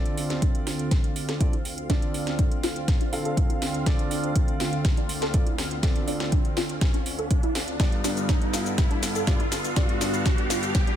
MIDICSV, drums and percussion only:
0, 0, Header, 1, 2, 480
1, 0, Start_track
1, 0, Tempo, 491803
1, 1851, Time_signature, 4, 2, 24, 8
1, 10698, End_track
2, 0, Start_track
2, 0, Title_t, "Drums"
2, 55, Note_on_c, 9, 42, 39
2, 152, Note_off_c, 9, 42, 0
2, 171, Note_on_c, 9, 46, 101
2, 268, Note_off_c, 9, 46, 0
2, 294, Note_on_c, 9, 38, 40
2, 294, Note_on_c, 9, 42, 39
2, 392, Note_off_c, 9, 38, 0
2, 392, Note_off_c, 9, 42, 0
2, 411, Note_on_c, 9, 36, 99
2, 411, Note_on_c, 9, 42, 90
2, 508, Note_off_c, 9, 36, 0
2, 509, Note_off_c, 9, 42, 0
2, 535, Note_on_c, 9, 42, 39
2, 633, Note_off_c, 9, 42, 0
2, 652, Note_on_c, 9, 38, 45
2, 652, Note_on_c, 9, 46, 84
2, 749, Note_off_c, 9, 38, 0
2, 749, Note_off_c, 9, 46, 0
2, 775, Note_on_c, 9, 42, 39
2, 872, Note_off_c, 9, 42, 0
2, 891, Note_on_c, 9, 36, 113
2, 891, Note_on_c, 9, 38, 50
2, 891, Note_on_c, 9, 42, 92
2, 989, Note_off_c, 9, 36, 0
2, 989, Note_off_c, 9, 38, 0
2, 989, Note_off_c, 9, 42, 0
2, 1015, Note_on_c, 9, 42, 39
2, 1113, Note_off_c, 9, 42, 0
2, 1132, Note_on_c, 9, 46, 100
2, 1229, Note_off_c, 9, 46, 0
2, 1256, Note_on_c, 9, 38, 44
2, 1256, Note_on_c, 9, 42, 41
2, 1353, Note_off_c, 9, 38, 0
2, 1353, Note_off_c, 9, 42, 0
2, 1371, Note_on_c, 9, 36, 100
2, 1372, Note_on_c, 9, 42, 92
2, 1469, Note_off_c, 9, 36, 0
2, 1469, Note_off_c, 9, 42, 0
2, 1496, Note_on_c, 9, 42, 40
2, 1594, Note_off_c, 9, 42, 0
2, 1612, Note_on_c, 9, 46, 86
2, 1710, Note_off_c, 9, 46, 0
2, 1735, Note_on_c, 9, 42, 39
2, 1833, Note_off_c, 9, 42, 0
2, 1851, Note_on_c, 9, 36, 118
2, 1852, Note_on_c, 9, 38, 51
2, 1852, Note_on_c, 9, 42, 92
2, 1948, Note_off_c, 9, 36, 0
2, 1949, Note_off_c, 9, 38, 0
2, 1949, Note_off_c, 9, 42, 0
2, 1975, Note_on_c, 9, 42, 39
2, 2073, Note_off_c, 9, 42, 0
2, 2091, Note_on_c, 9, 46, 105
2, 2189, Note_off_c, 9, 46, 0
2, 2215, Note_on_c, 9, 38, 45
2, 2215, Note_on_c, 9, 42, 38
2, 2313, Note_off_c, 9, 38, 0
2, 2313, Note_off_c, 9, 42, 0
2, 2331, Note_on_c, 9, 36, 105
2, 2331, Note_on_c, 9, 42, 89
2, 2428, Note_off_c, 9, 36, 0
2, 2428, Note_off_c, 9, 42, 0
2, 2455, Note_on_c, 9, 42, 38
2, 2552, Note_off_c, 9, 42, 0
2, 2571, Note_on_c, 9, 38, 53
2, 2571, Note_on_c, 9, 46, 90
2, 2669, Note_off_c, 9, 38, 0
2, 2669, Note_off_c, 9, 46, 0
2, 2695, Note_on_c, 9, 42, 38
2, 2792, Note_off_c, 9, 42, 0
2, 2811, Note_on_c, 9, 36, 120
2, 2812, Note_on_c, 9, 38, 53
2, 2812, Note_on_c, 9, 42, 89
2, 2908, Note_off_c, 9, 36, 0
2, 2909, Note_off_c, 9, 38, 0
2, 2909, Note_off_c, 9, 42, 0
2, 2935, Note_on_c, 9, 42, 39
2, 3032, Note_off_c, 9, 42, 0
2, 3052, Note_on_c, 9, 46, 105
2, 3149, Note_off_c, 9, 46, 0
2, 3175, Note_on_c, 9, 42, 39
2, 3273, Note_off_c, 9, 42, 0
2, 3291, Note_on_c, 9, 36, 105
2, 3293, Note_on_c, 9, 42, 93
2, 3388, Note_off_c, 9, 36, 0
2, 3390, Note_off_c, 9, 42, 0
2, 3415, Note_on_c, 9, 42, 40
2, 3513, Note_off_c, 9, 42, 0
2, 3532, Note_on_c, 9, 38, 56
2, 3532, Note_on_c, 9, 46, 91
2, 3629, Note_off_c, 9, 38, 0
2, 3629, Note_off_c, 9, 46, 0
2, 3655, Note_on_c, 9, 42, 39
2, 3753, Note_off_c, 9, 42, 0
2, 3771, Note_on_c, 9, 36, 121
2, 3771, Note_on_c, 9, 38, 58
2, 3771, Note_on_c, 9, 42, 89
2, 3868, Note_off_c, 9, 36, 0
2, 3869, Note_off_c, 9, 38, 0
2, 3869, Note_off_c, 9, 42, 0
2, 3895, Note_on_c, 9, 42, 37
2, 3993, Note_off_c, 9, 42, 0
2, 4011, Note_on_c, 9, 46, 108
2, 4109, Note_off_c, 9, 46, 0
2, 4135, Note_on_c, 9, 42, 38
2, 4232, Note_off_c, 9, 42, 0
2, 4251, Note_on_c, 9, 36, 107
2, 4251, Note_on_c, 9, 42, 83
2, 4348, Note_off_c, 9, 36, 0
2, 4348, Note_off_c, 9, 42, 0
2, 4374, Note_on_c, 9, 42, 37
2, 4471, Note_off_c, 9, 42, 0
2, 4490, Note_on_c, 9, 38, 59
2, 4490, Note_on_c, 9, 46, 90
2, 4588, Note_off_c, 9, 38, 0
2, 4588, Note_off_c, 9, 46, 0
2, 4614, Note_on_c, 9, 42, 38
2, 4711, Note_off_c, 9, 42, 0
2, 4731, Note_on_c, 9, 36, 124
2, 4731, Note_on_c, 9, 38, 63
2, 4731, Note_on_c, 9, 42, 87
2, 4828, Note_off_c, 9, 38, 0
2, 4828, Note_off_c, 9, 42, 0
2, 4829, Note_off_c, 9, 36, 0
2, 4853, Note_on_c, 9, 42, 38
2, 4951, Note_off_c, 9, 42, 0
2, 4970, Note_on_c, 9, 46, 110
2, 5067, Note_off_c, 9, 46, 0
2, 5094, Note_on_c, 9, 38, 55
2, 5094, Note_on_c, 9, 42, 38
2, 5191, Note_off_c, 9, 38, 0
2, 5191, Note_off_c, 9, 42, 0
2, 5210, Note_on_c, 9, 42, 92
2, 5211, Note_on_c, 9, 36, 107
2, 5308, Note_off_c, 9, 36, 0
2, 5308, Note_off_c, 9, 42, 0
2, 5334, Note_on_c, 9, 42, 38
2, 5432, Note_off_c, 9, 42, 0
2, 5450, Note_on_c, 9, 38, 64
2, 5450, Note_on_c, 9, 46, 96
2, 5548, Note_off_c, 9, 38, 0
2, 5548, Note_off_c, 9, 46, 0
2, 5574, Note_on_c, 9, 42, 39
2, 5672, Note_off_c, 9, 42, 0
2, 5691, Note_on_c, 9, 36, 118
2, 5691, Note_on_c, 9, 38, 66
2, 5691, Note_on_c, 9, 42, 87
2, 5788, Note_off_c, 9, 36, 0
2, 5788, Note_off_c, 9, 38, 0
2, 5788, Note_off_c, 9, 42, 0
2, 5813, Note_on_c, 9, 42, 38
2, 5911, Note_off_c, 9, 42, 0
2, 5930, Note_on_c, 9, 46, 104
2, 6028, Note_off_c, 9, 46, 0
2, 6053, Note_on_c, 9, 38, 56
2, 6053, Note_on_c, 9, 42, 36
2, 6151, Note_off_c, 9, 38, 0
2, 6151, Note_off_c, 9, 42, 0
2, 6170, Note_on_c, 9, 42, 83
2, 6171, Note_on_c, 9, 36, 107
2, 6268, Note_off_c, 9, 36, 0
2, 6268, Note_off_c, 9, 42, 0
2, 6294, Note_on_c, 9, 42, 36
2, 6391, Note_off_c, 9, 42, 0
2, 6410, Note_on_c, 9, 38, 65
2, 6410, Note_on_c, 9, 46, 93
2, 6508, Note_off_c, 9, 38, 0
2, 6508, Note_off_c, 9, 46, 0
2, 6534, Note_on_c, 9, 42, 37
2, 6631, Note_off_c, 9, 42, 0
2, 6650, Note_on_c, 9, 36, 123
2, 6650, Note_on_c, 9, 38, 69
2, 6650, Note_on_c, 9, 42, 86
2, 6748, Note_off_c, 9, 36, 0
2, 6748, Note_off_c, 9, 38, 0
2, 6748, Note_off_c, 9, 42, 0
2, 6774, Note_on_c, 9, 42, 38
2, 6871, Note_off_c, 9, 42, 0
2, 6890, Note_on_c, 9, 46, 107
2, 6988, Note_off_c, 9, 46, 0
2, 7014, Note_on_c, 9, 42, 37
2, 7111, Note_off_c, 9, 42, 0
2, 7130, Note_on_c, 9, 36, 107
2, 7130, Note_on_c, 9, 42, 90
2, 7228, Note_off_c, 9, 36, 0
2, 7228, Note_off_c, 9, 42, 0
2, 7254, Note_on_c, 9, 42, 38
2, 7351, Note_off_c, 9, 42, 0
2, 7370, Note_on_c, 9, 38, 72
2, 7370, Note_on_c, 9, 46, 95
2, 7468, Note_off_c, 9, 38, 0
2, 7468, Note_off_c, 9, 46, 0
2, 7493, Note_on_c, 9, 42, 37
2, 7591, Note_off_c, 9, 42, 0
2, 7610, Note_on_c, 9, 36, 119
2, 7610, Note_on_c, 9, 38, 74
2, 7610, Note_on_c, 9, 42, 88
2, 7612, Note_on_c, 9, 82, 34
2, 7707, Note_off_c, 9, 38, 0
2, 7707, Note_off_c, 9, 42, 0
2, 7708, Note_off_c, 9, 36, 0
2, 7709, Note_off_c, 9, 82, 0
2, 7734, Note_on_c, 9, 42, 38
2, 7831, Note_off_c, 9, 42, 0
2, 7850, Note_on_c, 9, 38, 74
2, 7850, Note_on_c, 9, 46, 104
2, 7852, Note_on_c, 9, 82, 77
2, 7947, Note_off_c, 9, 38, 0
2, 7947, Note_off_c, 9, 46, 0
2, 7950, Note_off_c, 9, 82, 0
2, 7973, Note_on_c, 9, 42, 37
2, 7976, Note_on_c, 9, 82, 43
2, 8071, Note_off_c, 9, 42, 0
2, 8073, Note_off_c, 9, 82, 0
2, 8090, Note_on_c, 9, 36, 105
2, 8090, Note_on_c, 9, 38, 73
2, 8090, Note_on_c, 9, 42, 82
2, 8092, Note_on_c, 9, 82, 32
2, 8188, Note_off_c, 9, 36, 0
2, 8188, Note_off_c, 9, 38, 0
2, 8188, Note_off_c, 9, 42, 0
2, 8190, Note_off_c, 9, 82, 0
2, 8214, Note_on_c, 9, 42, 38
2, 8311, Note_off_c, 9, 42, 0
2, 8330, Note_on_c, 9, 38, 75
2, 8330, Note_on_c, 9, 46, 89
2, 8332, Note_on_c, 9, 82, 75
2, 8427, Note_off_c, 9, 38, 0
2, 8427, Note_off_c, 9, 46, 0
2, 8430, Note_off_c, 9, 82, 0
2, 8453, Note_on_c, 9, 42, 37
2, 8455, Note_on_c, 9, 82, 45
2, 8551, Note_off_c, 9, 42, 0
2, 8553, Note_off_c, 9, 82, 0
2, 8570, Note_on_c, 9, 36, 119
2, 8570, Note_on_c, 9, 38, 80
2, 8570, Note_on_c, 9, 42, 89
2, 8572, Note_on_c, 9, 82, 34
2, 8667, Note_off_c, 9, 38, 0
2, 8667, Note_off_c, 9, 42, 0
2, 8668, Note_off_c, 9, 36, 0
2, 8670, Note_off_c, 9, 82, 0
2, 8693, Note_on_c, 9, 42, 38
2, 8791, Note_off_c, 9, 42, 0
2, 8810, Note_on_c, 9, 38, 80
2, 8810, Note_on_c, 9, 46, 104
2, 8812, Note_on_c, 9, 82, 80
2, 8908, Note_off_c, 9, 38, 0
2, 8908, Note_off_c, 9, 46, 0
2, 8910, Note_off_c, 9, 82, 0
2, 8933, Note_on_c, 9, 42, 38
2, 8935, Note_on_c, 9, 82, 46
2, 9031, Note_off_c, 9, 42, 0
2, 9033, Note_off_c, 9, 82, 0
2, 9050, Note_on_c, 9, 36, 104
2, 9050, Note_on_c, 9, 38, 82
2, 9050, Note_on_c, 9, 42, 88
2, 9052, Note_on_c, 9, 82, 35
2, 9148, Note_off_c, 9, 36, 0
2, 9148, Note_off_c, 9, 38, 0
2, 9148, Note_off_c, 9, 42, 0
2, 9150, Note_off_c, 9, 82, 0
2, 9173, Note_on_c, 9, 42, 38
2, 9271, Note_off_c, 9, 42, 0
2, 9289, Note_on_c, 9, 38, 78
2, 9289, Note_on_c, 9, 46, 91
2, 9291, Note_on_c, 9, 82, 76
2, 9387, Note_off_c, 9, 38, 0
2, 9387, Note_off_c, 9, 46, 0
2, 9389, Note_off_c, 9, 82, 0
2, 9413, Note_on_c, 9, 42, 37
2, 9415, Note_on_c, 9, 82, 45
2, 9511, Note_off_c, 9, 42, 0
2, 9513, Note_off_c, 9, 82, 0
2, 9529, Note_on_c, 9, 38, 81
2, 9529, Note_on_c, 9, 42, 92
2, 9530, Note_on_c, 9, 36, 112
2, 9532, Note_on_c, 9, 82, 35
2, 9627, Note_off_c, 9, 38, 0
2, 9627, Note_off_c, 9, 42, 0
2, 9628, Note_off_c, 9, 36, 0
2, 9629, Note_off_c, 9, 82, 0
2, 9653, Note_on_c, 9, 42, 39
2, 9750, Note_off_c, 9, 42, 0
2, 9770, Note_on_c, 9, 38, 83
2, 9770, Note_on_c, 9, 46, 98
2, 9772, Note_on_c, 9, 82, 80
2, 9868, Note_off_c, 9, 38, 0
2, 9868, Note_off_c, 9, 46, 0
2, 9870, Note_off_c, 9, 82, 0
2, 9893, Note_on_c, 9, 42, 38
2, 9895, Note_on_c, 9, 82, 45
2, 9991, Note_off_c, 9, 42, 0
2, 9993, Note_off_c, 9, 82, 0
2, 10010, Note_on_c, 9, 36, 101
2, 10010, Note_on_c, 9, 38, 83
2, 10010, Note_on_c, 9, 42, 86
2, 10012, Note_on_c, 9, 82, 35
2, 10108, Note_off_c, 9, 36, 0
2, 10108, Note_off_c, 9, 38, 0
2, 10108, Note_off_c, 9, 42, 0
2, 10110, Note_off_c, 9, 82, 0
2, 10132, Note_on_c, 9, 42, 40
2, 10230, Note_off_c, 9, 42, 0
2, 10249, Note_on_c, 9, 38, 87
2, 10249, Note_on_c, 9, 46, 88
2, 10252, Note_on_c, 9, 82, 78
2, 10347, Note_off_c, 9, 38, 0
2, 10347, Note_off_c, 9, 46, 0
2, 10349, Note_off_c, 9, 82, 0
2, 10373, Note_on_c, 9, 42, 38
2, 10375, Note_on_c, 9, 82, 46
2, 10471, Note_off_c, 9, 42, 0
2, 10473, Note_off_c, 9, 82, 0
2, 10490, Note_on_c, 9, 36, 116
2, 10490, Note_on_c, 9, 38, 85
2, 10490, Note_on_c, 9, 42, 93
2, 10492, Note_on_c, 9, 82, 36
2, 10587, Note_off_c, 9, 38, 0
2, 10587, Note_off_c, 9, 42, 0
2, 10588, Note_off_c, 9, 36, 0
2, 10590, Note_off_c, 9, 82, 0
2, 10613, Note_on_c, 9, 42, 38
2, 10698, Note_off_c, 9, 42, 0
2, 10698, End_track
0, 0, End_of_file